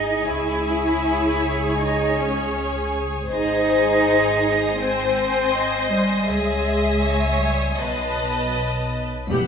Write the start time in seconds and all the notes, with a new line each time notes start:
Already playing: G#1 D#4 G#4 D#5 G#5
0.29 C#2 E4 C#5
1.80 D#4
2.18 C#4
3.29 G#1 D#4 G#4 C5 G#5 C6 D#6 A#6
4.79 C4 C5 G#5
5.55 D#5
5.93 G3
6.29 C#2 G#3 G#4 C#5 E5 G#5
7.06 C#5
7.42 G3
7.79 B1 F#3 B4 D#5 A5
9.28 E1 E2 G4 B4 F#5 E6 F#6 B6, taiko